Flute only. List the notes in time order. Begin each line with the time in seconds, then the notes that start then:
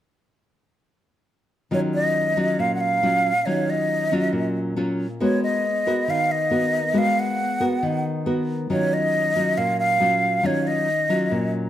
1.74 C#5
1.95 D#5
2.60 F5
2.75 F#5
2.80 F5
3.46 C#5
3.70 D#5
5.22 C#5
5.43 D#5
6.10 F5
6.31 D#5
6.98 F5
7.19 F#5
8.72 C#5
8.94 D#5
9.57 F5
9.79 F5
10.46 C#5
10.67 D#5